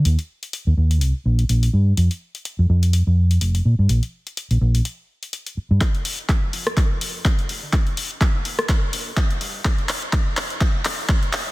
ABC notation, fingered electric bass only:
X:1
M:4/4
L:1/16
Q:"Swing 16ths" 1/4=125
K:Eb
V:1 name="Fingered electric bass" clef=bass
E,, z4 E,, E,,2 C,, z B,,, z B,,, z G,, z | F,, z4 F,, F,,3 F,,3 F,,, z B,, G,, | B,,, z4 B,,, B,,, z8 G,, | z4 z F,, F,,3 F,,3 z2 F,,, D, |
z4 z E,, E,,2 z2 B,,, z3 G,, z | z4 z F,, F,,3 F,,3 z2 B,, G,, |]